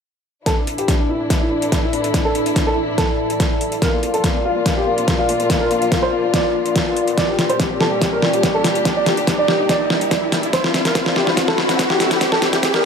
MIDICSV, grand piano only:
0, 0, Header, 1, 2, 480
1, 0, Start_track
1, 0, Key_signature, -1, "minor"
1, 0, Tempo, 419580
1, 530, Time_signature, 4, 2, 24, 8
1, 14702, End_track
2, 0, Start_track
2, 0, Title_t, "Grand piano"
2, 0, Program_c, 0, 0
2, 529, Note_on_c, 0, 69, 91
2, 625, Note_off_c, 0, 69, 0
2, 657, Note_on_c, 0, 62, 60
2, 743, Note_off_c, 0, 62, 0
2, 772, Note_on_c, 0, 62, 58
2, 866, Note_off_c, 0, 62, 0
2, 896, Note_on_c, 0, 67, 86
2, 982, Note_off_c, 0, 67, 0
2, 1010, Note_on_c, 0, 62, 55
2, 1106, Note_off_c, 0, 62, 0
2, 1135, Note_on_c, 0, 62, 59
2, 1222, Note_off_c, 0, 62, 0
2, 1249, Note_on_c, 0, 64, 85
2, 1345, Note_off_c, 0, 64, 0
2, 1376, Note_on_c, 0, 62, 60
2, 1463, Note_off_c, 0, 62, 0
2, 1491, Note_on_c, 0, 62, 60
2, 1586, Note_off_c, 0, 62, 0
2, 1615, Note_on_c, 0, 64, 84
2, 1702, Note_off_c, 0, 64, 0
2, 1731, Note_on_c, 0, 62, 61
2, 1826, Note_off_c, 0, 62, 0
2, 1856, Note_on_c, 0, 62, 59
2, 1943, Note_off_c, 0, 62, 0
2, 1971, Note_on_c, 0, 62, 59
2, 2066, Note_off_c, 0, 62, 0
2, 2094, Note_on_c, 0, 64, 86
2, 2182, Note_off_c, 0, 64, 0
2, 2211, Note_on_c, 0, 62, 61
2, 2306, Note_off_c, 0, 62, 0
2, 2335, Note_on_c, 0, 62, 58
2, 2422, Note_off_c, 0, 62, 0
2, 2449, Note_on_c, 0, 62, 57
2, 2545, Note_off_c, 0, 62, 0
2, 2574, Note_on_c, 0, 69, 91
2, 2662, Note_off_c, 0, 69, 0
2, 2687, Note_on_c, 0, 62, 61
2, 2784, Note_off_c, 0, 62, 0
2, 2813, Note_on_c, 0, 62, 59
2, 2901, Note_off_c, 0, 62, 0
2, 2929, Note_on_c, 0, 62, 56
2, 3025, Note_off_c, 0, 62, 0
2, 3053, Note_on_c, 0, 69, 91
2, 3141, Note_off_c, 0, 69, 0
2, 3167, Note_on_c, 0, 62, 59
2, 3264, Note_off_c, 0, 62, 0
2, 3293, Note_on_c, 0, 62, 62
2, 3381, Note_off_c, 0, 62, 0
2, 3408, Note_on_c, 0, 69, 90
2, 4277, Note_off_c, 0, 69, 0
2, 4369, Note_on_c, 0, 70, 90
2, 4465, Note_off_c, 0, 70, 0
2, 4495, Note_on_c, 0, 58, 62
2, 4582, Note_off_c, 0, 58, 0
2, 4610, Note_on_c, 0, 58, 62
2, 4706, Note_off_c, 0, 58, 0
2, 4735, Note_on_c, 0, 69, 89
2, 4822, Note_off_c, 0, 69, 0
2, 4850, Note_on_c, 0, 58, 58
2, 4946, Note_off_c, 0, 58, 0
2, 4975, Note_on_c, 0, 58, 59
2, 5062, Note_off_c, 0, 58, 0
2, 5091, Note_on_c, 0, 65, 91
2, 5186, Note_off_c, 0, 65, 0
2, 5216, Note_on_c, 0, 58, 64
2, 5303, Note_off_c, 0, 58, 0
2, 5333, Note_on_c, 0, 58, 60
2, 5427, Note_off_c, 0, 58, 0
2, 5455, Note_on_c, 0, 67, 88
2, 5542, Note_off_c, 0, 67, 0
2, 5571, Note_on_c, 0, 58, 62
2, 5666, Note_off_c, 0, 58, 0
2, 5696, Note_on_c, 0, 58, 61
2, 5782, Note_off_c, 0, 58, 0
2, 5810, Note_on_c, 0, 58, 59
2, 5906, Note_off_c, 0, 58, 0
2, 5936, Note_on_c, 0, 65, 86
2, 6023, Note_off_c, 0, 65, 0
2, 6050, Note_on_c, 0, 58, 60
2, 6145, Note_off_c, 0, 58, 0
2, 6176, Note_on_c, 0, 58, 60
2, 6263, Note_off_c, 0, 58, 0
2, 6290, Note_on_c, 0, 58, 60
2, 6385, Note_off_c, 0, 58, 0
2, 6415, Note_on_c, 0, 70, 92
2, 6502, Note_off_c, 0, 70, 0
2, 6532, Note_on_c, 0, 58, 60
2, 6626, Note_off_c, 0, 58, 0
2, 6655, Note_on_c, 0, 58, 61
2, 6742, Note_off_c, 0, 58, 0
2, 6770, Note_on_c, 0, 58, 60
2, 6865, Note_off_c, 0, 58, 0
2, 6894, Note_on_c, 0, 72, 90
2, 6982, Note_off_c, 0, 72, 0
2, 7009, Note_on_c, 0, 58, 60
2, 7105, Note_off_c, 0, 58, 0
2, 7136, Note_on_c, 0, 58, 63
2, 7223, Note_off_c, 0, 58, 0
2, 7250, Note_on_c, 0, 74, 87
2, 8118, Note_off_c, 0, 74, 0
2, 8210, Note_on_c, 0, 74, 95
2, 8306, Note_off_c, 0, 74, 0
2, 8336, Note_on_c, 0, 67, 62
2, 8423, Note_off_c, 0, 67, 0
2, 8451, Note_on_c, 0, 67, 61
2, 8546, Note_off_c, 0, 67, 0
2, 8575, Note_on_c, 0, 72, 89
2, 8662, Note_off_c, 0, 72, 0
2, 8690, Note_on_c, 0, 67, 61
2, 8785, Note_off_c, 0, 67, 0
2, 8816, Note_on_c, 0, 67, 60
2, 8903, Note_off_c, 0, 67, 0
2, 8931, Note_on_c, 0, 69, 89
2, 9026, Note_off_c, 0, 69, 0
2, 9056, Note_on_c, 0, 67, 63
2, 9143, Note_off_c, 0, 67, 0
2, 9172, Note_on_c, 0, 67, 61
2, 9266, Note_off_c, 0, 67, 0
2, 9298, Note_on_c, 0, 70, 87
2, 9383, Note_off_c, 0, 70, 0
2, 9412, Note_on_c, 0, 67, 62
2, 9507, Note_off_c, 0, 67, 0
2, 9537, Note_on_c, 0, 67, 65
2, 9623, Note_off_c, 0, 67, 0
2, 9651, Note_on_c, 0, 67, 60
2, 9746, Note_off_c, 0, 67, 0
2, 9775, Note_on_c, 0, 69, 92
2, 9862, Note_off_c, 0, 69, 0
2, 9891, Note_on_c, 0, 67, 63
2, 9986, Note_off_c, 0, 67, 0
2, 10017, Note_on_c, 0, 67, 63
2, 10103, Note_off_c, 0, 67, 0
2, 10131, Note_on_c, 0, 67, 62
2, 10226, Note_off_c, 0, 67, 0
2, 10256, Note_on_c, 0, 74, 95
2, 10343, Note_off_c, 0, 74, 0
2, 10369, Note_on_c, 0, 67, 63
2, 10465, Note_off_c, 0, 67, 0
2, 10497, Note_on_c, 0, 67, 64
2, 10583, Note_off_c, 0, 67, 0
2, 10612, Note_on_c, 0, 67, 58
2, 10706, Note_off_c, 0, 67, 0
2, 10736, Note_on_c, 0, 74, 94
2, 10823, Note_off_c, 0, 74, 0
2, 10850, Note_on_c, 0, 67, 61
2, 10946, Note_off_c, 0, 67, 0
2, 10976, Note_on_c, 0, 67, 63
2, 11063, Note_off_c, 0, 67, 0
2, 11089, Note_on_c, 0, 74, 93
2, 11958, Note_off_c, 0, 74, 0
2, 12051, Note_on_c, 0, 72, 96
2, 12146, Note_off_c, 0, 72, 0
2, 12176, Note_on_c, 0, 60, 66
2, 12263, Note_off_c, 0, 60, 0
2, 12289, Note_on_c, 0, 60, 64
2, 12385, Note_off_c, 0, 60, 0
2, 12415, Note_on_c, 0, 70, 94
2, 12502, Note_off_c, 0, 70, 0
2, 12529, Note_on_c, 0, 60, 63
2, 12625, Note_off_c, 0, 60, 0
2, 12653, Note_on_c, 0, 60, 66
2, 12741, Note_off_c, 0, 60, 0
2, 12768, Note_on_c, 0, 67, 93
2, 12865, Note_off_c, 0, 67, 0
2, 12895, Note_on_c, 0, 60, 63
2, 12982, Note_off_c, 0, 60, 0
2, 13008, Note_on_c, 0, 60, 64
2, 13105, Note_off_c, 0, 60, 0
2, 13133, Note_on_c, 0, 69, 90
2, 13221, Note_off_c, 0, 69, 0
2, 13247, Note_on_c, 0, 60, 67
2, 13344, Note_off_c, 0, 60, 0
2, 13372, Note_on_c, 0, 60, 64
2, 13461, Note_off_c, 0, 60, 0
2, 13487, Note_on_c, 0, 60, 63
2, 13584, Note_off_c, 0, 60, 0
2, 13614, Note_on_c, 0, 67, 93
2, 13702, Note_off_c, 0, 67, 0
2, 13728, Note_on_c, 0, 60, 67
2, 13824, Note_off_c, 0, 60, 0
2, 13853, Note_on_c, 0, 60, 64
2, 13941, Note_off_c, 0, 60, 0
2, 13969, Note_on_c, 0, 60, 66
2, 14065, Note_off_c, 0, 60, 0
2, 14095, Note_on_c, 0, 69, 98
2, 14182, Note_off_c, 0, 69, 0
2, 14210, Note_on_c, 0, 60, 68
2, 14306, Note_off_c, 0, 60, 0
2, 14336, Note_on_c, 0, 60, 65
2, 14423, Note_off_c, 0, 60, 0
2, 14451, Note_on_c, 0, 60, 62
2, 14546, Note_off_c, 0, 60, 0
2, 14577, Note_on_c, 0, 70, 98
2, 14663, Note_off_c, 0, 70, 0
2, 14702, End_track
0, 0, End_of_file